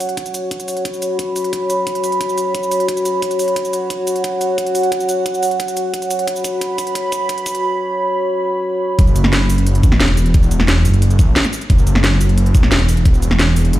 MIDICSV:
0, 0, Header, 1, 4, 480
1, 0, Start_track
1, 0, Tempo, 338983
1, 1206, Time_signature, 4, 2, 24, 8
1, 19535, End_track
2, 0, Start_track
2, 0, Title_t, "Analog synth pad"
2, 0, Program_c, 0, 89
2, 0, Note_on_c, 0, 66, 77
2, 0, Note_on_c, 0, 73, 71
2, 0, Note_on_c, 0, 78, 85
2, 1191, Note_off_c, 0, 78, 0
2, 1205, Note_on_c, 0, 83, 83
2, 5031, Note_off_c, 0, 83, 0
2, 5044, Note_on_c, 0, 78, 84
2, 8870, Note_off_c, 0, 78, 0
2, 8884, Note_on_c, 0, 83, 86
2, 12669, Note_off_c, 0, 66, 0
2, 12669, Note_off_c, 0, 73, 0
2, 12710, Note_off_c, 0, 83, 0
2, 19535, End_track
3, 0, Start_track
3, 0, Title_t, "Detuned saw bass"
3, 0, Program_c, 1, 39
3, 12726, Note_on_c, 1, 30, 98
3, 13427, Note_off_c, 1, 30, 0
3, 13446, Note_on_c, 1, 30, 98
3, 13907, Note_off_c, 1, 30, 0
3, 13926, Note_on_c, 1, 33, 100
3, 14147, Note_off_c, 1, 33, 0
3, 14166, Note_on_c, 1, 28, 97
3, 14867, Note_off_c, 1, 28, 0
3, 14886, Note_on_c, 1, 28, 97
3, 15347, Note_off_c, 1, 28, 0
3, 15366, Note_on_c, 1, 30, 95
3, 15827, Note_off_c, 1, 30, 0
3, 15846, Note_on_c, 1, 33, 97
3, 16067, Note_off_c, 1, 33, 0
3, 16566, Note_on_c, 1, 30, 97
3, 17266, Note_off_c, 1, 30, 0
3, 17285, Note_on_c, 1, 30, 96
3, 17746, Note_off_c, 1, 30, 0
3, 17765, Note_on_c, 1, 33, 102
3, 17986, Note_off_c, 1, 33, 0
3, 18006, Note_on_c, 1, 28, 96
3, 18706, Note_off_c, 1, 28, 0
3, 18726, Note_on_c, 1, 28, 100
3, 19187, Note_off_c, 1, 28, 0
3, 19205, Note_on_c, 1, 28, 101
3, 19426, Note_off_c, 1, 28, 0
3, 19446, Note_on_c, 1, 30, 101
3, 19535, Note_off_c, 1, 30, 0
3, 19535, End_track
4, 0, Start_track
4, 0, Title_t, "Drums"
4, 5, Note_on_c, 9, 46, 73
4, 5, Note_on_c, 9, 82, 58
4, 125, Note_on_c, 9, 42, 35
4, 147, Note_off_c, 9, 46, 0
4, 147, Note_off_c, 9, 82, 0
4, 245, Note_off_c, 9, 42, 0
4, 245, Note_on_c, 9, 36, 98
4, 245, Note_on_c, 9, 42, 100
4, 366, Note_off_c, 9, 42, 0
4, 366, Note_on_c, 9, 42, 36
4, 366, Note_on_c, 9, 82, 25
4, 387, Note_off_c, 9, 36, 0
4, 485, Note_off_c, 9, 42, 0
4, 485, Note_off_c, 9, 82, 0
4, 485, Note_on_c, 9, 42, 63
4, 485, Note_on_c, 9, 82, 55
4, 627, Note_off_c, 9, 42, 0
4, 627, Note_off_c, 9, 82, 0
4, 725, Note_on_c, 9, 36, 95
4, 725, Note_on_c, 9, 42, 91
4, 845, Note_off_c, 9, 42, 0
4, 845, Note_on_c, 9, 42, 38
4, 845, Note_on_c, 9, 82, 26
4, 867, Note_off_c, 9, 36, 0
4, 965, Note_off_c, 9, 82, 0
4, 965, Note_on_c, 9, 46, 77
4, 965, Note_on_c, 9, 82, 56
4, 987, Note_off_c, 9, 42, 0
4, 1086, Note_on_c, 9, 42, 38
4, 1107, Note_off_c, 9, 46, 0
4, 1107, Note_off_c, 9, 82, 0
4, 1205, Note_on_c, 9, 36, 97
4, 1206, Note_off_c, 9, 42, 0
4, 1206, Note_on_c, 9, 42, 90
4, 1326, Note_on_c, 9, 82, 26
4, 1347, Note_off_c, 9, 36, 0
4, 1347, Note_off_c, 9, 42, 0
4, 1446, Note_off_c, 9, 82, 0
4, 1446, Note_on_c, 9, 42, 63
4, 1446, Note_on_c, 9, 82, 54
4, 1588, Note_off_c, 9, 42, 0
4, 1588, Note_off_c, 9, 82, 0
4, 1685, Note_on_c, 9, 36, 96
4, 1686, Note_on_c, 9, 42, 93
4, 1827, Note_off_c, 9, 36, 0
4, 1827, Note_off_c, 9, 42, 0
4, 1926, Note_on_c, 9, 46, 76
4, 1926, Note_on_c, 9, 82, 56
4, 2046, Note_on_c, 9, 42, 37
4, 2068, Note_off_c, 9, 46, 0
4, 2068, Note_off_c, 9, 82, 0
4, 2165, Note_off_c, 9, 42, 0
4, 2165, Note_on_c, 9, 36, 97
4, 2165, Note_on_c, 9, 42, 94
4, 2307, Note_off_c, 9, 36, 0
4, 2307, Note_off_c, 9, 42, 0
4, 2405, Note_on_c, 9, 42, 62
4, 2405, Note_on_c, 9, 82, 54
4, 2547, Note_off_c, 9, 42, 0
4, 2547, Note_off_c, 9, 82, 0
4, 2645, Note_on_c, 9, 36, 98
4, 2645, Note_on_c, 9, 42, 84
4, 2765, Note_off_c, 9, 42, 0
4, 2765, Note_on_c, 9, 42, 35
4, 2787, Note_off_c, 9, 36, 0
4, 2885, Note_on_c, 9, 46, 80
4, 2885, Note_on_c, 9, 82, 57
4, 2906, Note_off_c, 9, 42, 0
4, 3005, Note_on_c, 9, 42, 37
4, 3027, Note_off_c, 9, 46, 0
4, 3027, Note_off_c, 9, 82, 0
4, 3125, Note_off_c, 9, 42, 0
4, 3125, Note_on_c, 9, 36, 93
4, 3125, Note_on_c, 9, 42, 88
4, 3245, Note_on_c, 9, 82, 26
4, 3267, Note_off_c, 9, 36, 0
4, 3267, Note_off_c, 9, 42, 0
4, 3365, Note_off_c, 9, 82, 0
4, 3365, Note_on_c, 9, 42, 61
4, 3365, Note_on_c, 9, 82, 56
4, 3507, Note_off_c, 9, 42, 0
4, 3507, Note_off_c, 9, 82, 0
4, 3605, Note_on_c, 9, 36, 95
4, 3605, Note_on_c, 9, 42, 90
4, 3725, Note_on_c, 9, 82, 25
4, 3746, Note_off_c, 9, 42, 0
4, 3747, Note_off_c, 9, 36, 0
4, 3845, Note_off_c, 9, 82, 0
4, 3845, Note_on_c, 9, 46, 82
4, 3845, Note_on_c, 9, 82, 57
4, 3966, Note_on_c, 9, 42, 37
4, 3987, Note_off_c, 9, 46, 0
4, 3987, Note_off_c, 9, 82, 0
4, 4085, Note_on_c, 9, 36, 101
4, 4086, Note_off_c, 9, 42, 0
4, 4086, Note_on_c, 9, 42, 94
4, 4206, Note_off_c, 9, 42, 0
4, 4206, Note_on_c, 9, 42, 34
4, 4206, Note_on_c, 9, 82, 27
4, 4227, Note_off_c, 9, 36, 0
4, 4325, Note_off_c, 9, 42, 0
4, 4325, Note_off_c, 9, 82, 0
4, 4325, Note_on_c, 9, 42, 60
4, 4325, Note_on_c, 9, 82, 57
4, 4467, Note_off_c, 9, 42, 0
4, 4467, Note_off_c, 9, 82, 0
4, 4565, Note_on_c, 9, 36, 99
4, 4565, Note_on_c, 9, 42, 84
4, 4685, Note_off_c, 9, 42, 0
4, 4685, Note_on_c, 9, 42, 36
4, 4685, Note_on_c, 9, 82, 27
4, 4707, Note_off_c, 9, 36, 0
4, 4805, Note_off_c, 9, 82, 0
4, 4805, Note_on_c, 9, 46, 84
4, 4805, Note_on_c, 9, 82, 56
4, 4827, Note_off_c, 9, 42, 0
4, 4925, Note_on_c, 9, 42, 35
4, 4947, Note_off_c, 9, 46, 0
4, 4947, Note_off_c, 9, 82, 0
4, 5045, Note_off_c, 9, 42, 0
4, 5045, Note_on_c, 9, 36, 103
4, 5045, Note_on_c, 9, 42, 87
4, 5165, Note_on_c, 9, 82, 28
4, 5187, Note_off_c, 9, 36, 0
4, 5187, Note_off_c, 9, 42, 0
4, 5286, Note_off_c, 9, 82, 0
4, 5286, Note_on_c, 9, 42, 63
4, 5286, Note_on_c, 9, 82, 56
4, 5427, Note_off_c, 9, 42, 0
4, 5427, Note_off_c, 9, 82, 0
4, 5525, Note_on_c, 9, 36, 105
4, 5526, Note_on_c, 9, 42, 89
4, 5667, Note_off_c, 9, 36, 0
4, 5667, Note_off_c, 9, 42, 0
4, 5766, Note_on_c, 9, 46, 79
4, 5766, Note_on_c, 9, 82, 61
4, 5885, Note_on_c, 9, 42, 35
4, 5907, Note_off_c, 9, 46, 0
4, 5907, Note_off_c, 9, 82, 0
4, 6005, Note_off_c, 9, 42, 0
4, 6005, Note_on_c, 9, 36, 107
4, 6005, Note_on_c, 9, 42, 92
4, 6146, Note_off_c, 9, 42, 0
4, 6147, Note_off_c, 9, 36, 0
4, 6245, Note_on_c, 9, 42, 61
4, 6245, Note_on_c, 9, 82, 58
4, 6387, Note_off_c, 9, 42, 0
4, 6387, Note_off_c, 9, 82, 0
4, 6485, Note_on_c, 9, 36, 98
4, 6486, Note_on_c, 9, 42, 89
4, 6605, Note_off_c, 9, 42, 0
4, 6605, Note_on_c, 9, 42, 34
4, 6627, Note_off_c, 9, 36, 0
4, 6725, Note_on_c, 9, 46, 83
4, 6725, Note_on_c, 9, 82, 60
4, 6747, Note_off_c, 9, 42, 0
4, 6845, Note_on_c, 9, 42, 37
4, 6867, Note_off_c, 9, 46, 0
4, 6867, Note_off_c, 9, 82, 0
4, 6965, Note_off_c, 9, 42, 0
4, 6965, Note_on_c, 9, 36, 103
4, 6965, Note_on_c, 9, 42, 93
4, 7085, Note_on_c, 9, 82, 28
4, 7107, Note_off_c, 9, 36, 0
4, 7107, Note_off_c, 9, 42, 0
4, 7205, Note_off_c, 9, 82, 0
4, 7205, Note_on_c, 9, 42, 66
4, 7205, Note_on_c, 9, 82, 61
4, 7347, Note_off_c, 9, 42, 0
4, 7347, Note_off_c, 9, 82, 0
4, 7445, Note_on_c, 9, 42, 94
4, 7446, Note_on_c, 9, 36, 101
4, 7565, Note_on_c, 9, 82, 29
4, 7587, Note_off_c, 9, 36, 0
4, 7587, Note_off_c, 9, 42, 0
4, 7685, Note_off_c, 9, 82, 0
4, 7685, Note_on_c, 9, 46, 79
4, 7685, Note_on_c, 9, 82, 61
4, 7806, Note_on_c, 9, 42, 36
4, 7827, Note_off_c, 9, 46, 0
4, 7827, Note_off_c, 9, 82, 0
4, 7926, Note_off_c, 9, 42, 0
4, 7926, Note_on_c, 9, 36, 107
4, 7926, Note_on_c, 9, 42, 94
4, 8047, Note_off_c, 9, 42, 0
4, 8047, Note_on_c, 9, 42, 37
4, 8047, Note_on_c, 9, 82, 29
4, 8067, Note_off_c, 9, 36, 0
4, 8166, Note_off_c, 9, 42, 0
4, 8166, Note_off_c, 9, 82, 0
4, 8166, Note_on_c, 9, 42, 66
4, 8166, Note_on_c, 9, 82, 63
4, 8308, Note_off_c, 9, 42, 0
4, 8308, Note_off_c, 9, 82, 0
4, 8406, Note_on_c, 9, 36, 101
4, 8406, Note_on_c, 9, 42, 90
4, 8525, Note_off_c, 9, 42, 0
4, 8525, Note_on_c, 9, 42, 37
4, 8525, Note_on_c, 9, 82, 30
4, 8547, Note_off_c, 9, 36, 0
4, 8646, Note_off_c, 9, 82, 0
4, 8646, Note_on_c, 9, 46, 84
4, 8646, Note_on_c, 9, 82, 65
4, 8667, Note_off_c, 9, 42, 0
4, 8766, Note_on_c, 9, 42, 39
4, 8787, Note_off_c, 9, 46, 0
4, 8787, Note_off_c, 9, 82, 0
4, 8886, Note_off_c, 9, 42, 0
4, 8886, Note_on_c, 9, 36, 101
4, 8886, Note_on_c, 9, 42, 96
4, 9006, Note_on_c, 9, 82, 29
4, 9027, Note_off_c, 9, 36, 0
4, 9027, Note_off_c, 9, 42, 0
4, 9125, Note_off_c, 9, 82, 0
4, 9125, Note_on_c, 9, 42, 67
4, 9125, Note_on_c, 9, 82, 64
4, 9126, Note_on_c, 9, 36, 111
4, 9267, Note_off_c, 9, 36, 0
4, 9267, Note_off_c, 9, 42, 0
4, 9267, Note_off_c, 9, 82, 0
4, 9366, Note_on_c, 9, 36, 104
4, 9366, Note_on_c, 9, 42, 100
4, 9507, Note_off_c, 9, 36, 0
4, 9507, Note_off_c, 9, 42, 0
4, 9606, Note_on_c, 9, 36, 103
4, 9606, Note_on_c, 9, 46, 75
4, 9606, Note_on_c, 9, 82, 62
4, 9726, Note_on_c, 9, 42, 38
4, 9747, Note_off_c, 9, 36, 0
4, 9748, Note_off_c, 9, 46, 0
4, 9748, Note_off_c, 9, 82, 0
4, 9846, Note_off_c, 9, 42, 0
4, 9846, Note_on_c, 9, 36, 107
4, 9846, Note_on_c, 9, 42, 102
4, 9987, Note_off_c, 9, 36, 0
4, 9987, Note_off_c, 9, 42, 0
4, 10086, Note_on_c, 9, 36, 101
4, 10086, Note_on_c, 9, 42, 67
4, 10086, Note_on_c, 9, 82, 60
4, 10227, Note_off_c, 9, 36, 0
4, 10227, Note_off_c, 9, 42, 0
4, 10227, Note_off_c, 9, 82, 0
4, 10326, Note_on_c, 9, 36, 105
4, 10326, Note_on_c, 9, 42, 93
4, 10446, Note_off_c, 9, 42, 0
4, 10446, Note_on_c, 9, 42, 39
4, 10467, Note_off_c, 9, 36, 0
4, 10565, Note_on_c, 9, 36, 106
4, 10565, Note_on_c, 9, 46, 79
4, 10565, Note_on_c, 9, 82, 61
4, 10588, Note_off_c, 9, 42, 0
4, 10686, Note_on_c, 9, 42, 40
4, 10707, Note_off_c, 9, 36, 0
4, 10707, Note_off_c, 9, 46, 0
4, 10707, Note_off_c, 9, 82, 0
4, 10827, Note_off_c, 9, 42, 0
4, 12726, Note_on_c, 9, 36, 122
4, 12726, Note_on_c, 9, 42, 98
4, 12846, Note_on_c, 9, 82, 27
4, 12867, Note_off_c, 9, 36, 0
4, 12867, Note_off_c, 9, 42, 0
4, 12966, Note_off_c, 9, 82, 0
4, 12966, Note_on_c, 9, 42, 67
4, 12966, Note_on_c, 9, 82, 59
4, 13086, Note_on_c, 9, 40, 56
4, 13108, Note_off_c, 9, 42, 0
4, 13108, Note_off_c, 9, 82, 0
4, 13206, Note_on_c, 9, 38, 122
4, 13206, Note_on_c, 9, 42, 99
4, 13228, Note_off_c, 9, 40, 0
4, 13348, Note_off_c, 9, 38, 0
4, 13348, Note_off_c, 9, 42, 0
4, 13446, Note_on_c, 9, 46, 74
4, 13446, Note_on_c, 9, 82, 60
4, 13566, Note_on_c, 9, 42, 41
4, 13588, Note_off_c, 9, 46, 0
4, 13588, Note_off_c, 9, 82, 0
4, 13686, Note_off_c, 9, 42, 0
4, 13686, Note_on_c, 9, 42, 105
4, 13806, Note_off_c, 9, 42, 0
4, 13806, Note_on_c, 9, 42, 37
4, 13925, Note_off_c, 9, 42, 0
4, 13925, Note_on_c, 9, 42, 69
4, 13925, Note_on_c, 9, 82, 59
4, 13926, Note_on_c, 9, 36, 103
4, 14045, Note_on_c, 9, 40, 51
4, 14067, Note_off_c, 9, 36, 0
4, 14067, Note_off_c, 9, 42, 0
4, 14067, Note_off_c, 9, 82, 0
4, 14165, Note_on_c, 9, 38, 122
4, 14165, Note_on_c, 9, 42, 95
4, 14187, Note_off_c, 9, 40, 0
4, 14307, Note_off_c, 9, 38, 0
4, 14307, Note_off_c, 9, 42, 0
4, 14405, Note_on_c, 9, 46, 76
4, 14405, Note_on_c, 9, 82, 57
4, 14526, Note_on_c, 9, 42, 39
4, 14547, Note_off_c, 9, 46, 0
4, 14547, Note_off_c, 9, 82, 0
4, 14645, Note_off_c, 9, 42, 0
4, 14645, Note_on_c, 9, 42, 92
4, 14646, Note_on_c, 9, 36, 123
4, 14765, Note_on_c, 9, 82, 28
4, 14787, Note_off_c, 9, 36, 0
4, 14787, Note_off_c, 9, 42, 0
4, 14886, Note_off_c, 9, 82, 0
4, 14886, Note_on_c, 9, 42, 68
4, 14886, Note_on_c, 9, 82, 58
4, 15005, Note_on_c, 9, 40, 56
4, 15027, Note_off_c, 9, 42, 0
4, 15027, Note_off_c, 9, 82, 0
4, 15125, Note_on_c, 9, 38, 127
4, 15125, Note_on_c, 9, 42, 96
4, 15147, Note_off_c, 9, 40, 0
4, 15267, Note_off_c, 9, 38, 0
4, 15267, Note_off_c, 9, 42, 0
4, 15366, Note_on_c, 9, 46, 76
4, 15366, Note_on_c, 9, 82, 57
4, 15486, Note_on_c, 9, 42, 37
4, 15507, Note_off_c, 9, 46, 0
4, 15507, Note_off_c, 9, 82, 0
4, 15605, Note_off_c, 9, 42, 0
4, 15605, Note_on_c, 9, 42, 101
4, 15726, Note_off_c, 9, 42, 0
4, 15726, Note_on_c, 9, 42, 38
4, 15726, Note_on_c, 9, 82, 26
4, 15845, Note_off_c, 9, 42, 0
4, 15845, Note_off_c, 9, 82, 0
4, 15845, Note_on_c, 9, 42, 69
4, 15845, Note_on_c, 9, 82, 58
4, 15846, Note_on_c, 9, 36, 113
4, 15987, Note_off_c, 9, 36, 0
4, 15987, Note_off_c, 9, 42, 0
4, 15987, Note_off_c, 9, 82, 0
4, 16085, Note_on_c, 9, 38, 119
4, 16085, Note_on_c, 9, 42, 92
4, 16206, Note_off_c, 9, 42, 0
4, 16206, Note_on_c, 9, 40, 36
4, 16206, Note_on_c, 9, 42, 38
4, 16206, Note_on_c, 9, 82, 27
4, 16227, Note_off_c, 9, 38, 0
4, 16326, Note_off_c, 9, 82, 0
4, 16326, Note_on_c, 9, 46, 80
4, 16326, Note_on_c, 9, 82, 57
4, 16347, Note_off_c, 9, 40, 0
4, 16347, Note_off_c, 9, 42, 0
4, 16446, Note_on_c, 9, 42, 38
4, 16467, Note_off_c, 9, 46, 0
4, 16467, Note_off_c, 9, 82, 0
4, 16566, Note_off_c, 9, 42, 0
4, 16566, Note_on_c, 9, 36, 119
4, 16566, Note_on_c, 9, 42, 92
4, 16685, Note_on_c, 9, 82, 27
4, 16707, Note_off_c, 9, 36, 0
4, 16707, Note_off_c, 9, 42, 0
4, 16806, Note_off_c, 9, 82, 0
4, 16806, Note_on_c, 9, 42, 63
4, 16806, Note_on_c, 9, 82, 56
4, 16926, Note_on_c, 9, 40, 57
4, 16947, Note_off_c, 9, 42, 0
4, 16947, Note_off_c, 9, 82, 0
4, 17045, Note_on_c, 9, 38, 127
4, 17045, Note_on_c, 9, 42, 98
4, 17067, Note_off_c, 9, 40, 0
4, 17186, Note_off_c, 9, 38, 0
4, 17186, Note_off_c, 9, 42, 0
4, 17285, Note_on_c, 9, 46, 83
4, 17285, Note_on_c, 9, 82, 59
4, 17405, Note_on_c, 9, 42, 35
4, 17427, Note_off_c, 9, 46, 0
4, 17427, Note_off_c, 9, 82, 0
4, 17525, Note_off_c, 9, 42, 0
4, 17525, Note_on_c, 9, 42, 97
4, 17645, Note_off_c, 9, 42, 0
4, 17645, Note_on_c, 9, 42, 35
4, 17765, Note_off_c, 9, 42, 0
4, 17765, Note_on_c, 9, 42, 67
4, 17765, Note_on_c, 9, 82, 58
4, 17766, Note_on_c, 9, 36, 105
4, 17886, Note_on_c, 9, 40, 50
4, 17907, Note_off_c, 9, 36, 0
4, 17907, Note_off_c, 9, 42, 0
4, 17907, Note_off_c, 9, 82, 0
4, 18006, Note_on_c, 9, 38, 127
4, 18006, Note_on_c, 9, 42, 90
4, 18027, Note_off_c, 9, 40, 0
4, 18147, Note_off_c, 9, 38, 0
4, 18147, Note_off_c, 9, 42, 0
4, 18246, Note_on_c, 9, 46, 84
4, 18246, Note_on_c, 9, 82, 56
4, 18366, Note_on_c, 9, 42, 37
4, 18388, Note_off_c, 9, 46, 0
4, 18388, Note_off_c, 9, 82, 0
4, 18486, Note_off_c, 9, 42, 0
4, 18486, Note_on_c, 9, 36, 122
4, 18486, Note_on_c, 9, 42, 94
4, 18606, Note_on_c, 9, 82, 27
4, 18627, Note_off_c, 9, 36, 0
4, 18627, Note_off_c, 9, 42, 0
4, 18726, Note_off_c, 9, 82, 0
4, 18726, Note_on_c, 9, 42, 64
4, 18726, Note_on_c, 9, 82, 55
4, 18845, Note_on_c, 9, 40, 55
4, 18867, Note_off_c, 9, 42, 0
4, 18867, Note_off_c, 9, 82, 0
4, 18965, Note_on_c, 9, 38, 127
4, 18965, Note_on_c, 9, 42, 91
4, 18987, Note_off_c, 9, 40, 0
4, 19107, Note_off_c, 9, 38, 0
4, 19107, Note_off_c, 9, 42, 0
4, 19205, Note_on_c, 9, 46, 83
4, 19205, Note_on_c, 9, 82, 57
4, 19326, Note_on_c, 9, 42, 35
4, 19347, Note_off_c, 9, 46, 0
4, 19347, Note_off_c, 9, 82, 0
4, 19446, Note_off_c, 9, 42, 0
4, 19446, Note_on_c, 9, 42, 94
4, 19535, Note_off_c, 9, 42, 0
4, 19535, End_track
0, 0, End_of_file